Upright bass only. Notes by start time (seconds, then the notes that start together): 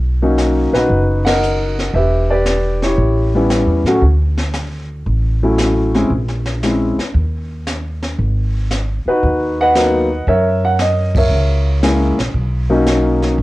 Already playing: B1
0.73 A#1
0.90 F#1
1.94 E1
2.97 A1
3.66 E2
3.84 A2
4.02 D2
5.06 A1
6.10 A#1
6.98 muted upright bass stroke
7.14 D#2
8.18 G#1
9.06 muted upright bass stroke
9.23 D#2
10.27 F#2
11.30 C#2
12.18 A#1
12.34 B1
13.38 F#1